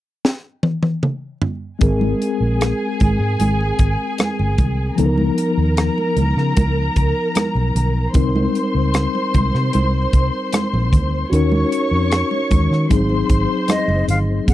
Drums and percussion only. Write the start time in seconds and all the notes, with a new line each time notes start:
0.25 snare
0.63 high tom
0.83 high tom
1.03 mid tom
1.42 floor tom
1.81 kick, closed hi-hat, low conga
2.01 muted conga, high conga
2.22 closed hi-hat
2.61 cross-stick, closed hi-hat, muted conga
3.00 kick, closed hi-hat, high conga, low conga
3.40 closed hi-hat, muted conga, high conga
3.60 muted conga
3.79 kick, closed hi-hat
4.18 cross-stick, closed hi-hat, muted conga, high conga
4.39 muted conga
4.58 kick, closed hi-hat, low conga
4.98 closed hi-hat, muted conga, low conga
5.18 high conga
5.38 closed hi-hat
5.77 cross-stick, closed hi-hat
5.98 muted conga
6.17 closed hi-hat, high conga, low conga
6.38 cross-stick
6.57 kick, closed hi-hat, muted conga, high conga
6.96 kick, closed hi-hat
7.35 cross-stick, closed hi-hat, muted conga, high conga
7.56 muted conga
7.76 closed hi-hat, low conga
8.14 kick, closed hi-hat, muted conga, low conga
8.36 muted conga, high conga
8.55 closed hi-hat
8.94 cross-stick, closed hi-hat, muted conga
9.15 muted conga
9.34 kick, closed hi-hat, high conga, low conga
9.55 cross-stick
9.73 closed hi-hat, high conga
10.13 kick, closed hi-hat
10.53 cross-stick, closed hi-hat, muted conga, high conga
10.74 muted conga
10.93 kick, closed hi-hat, low conga
11.33 closed hi-hat, low conga
11.52 high conga
11.72 closed hi-hat
12.11 cross-stick, closed hi-hat, muted conga
12.31 muted conga
12.51 kick, closed hi-hat, high conga, low conga
12.73 cross-stick
12.90 kick, closed hi-hat, muted conga, high conga
13.09 muted conga
13.29 kick, closed hi-hat
13.68 cross-stick, closed hi-hat, high conga
13.89 muted conga
14.08 closed hi-hat, low conga
14.48 kick, closed hi-hat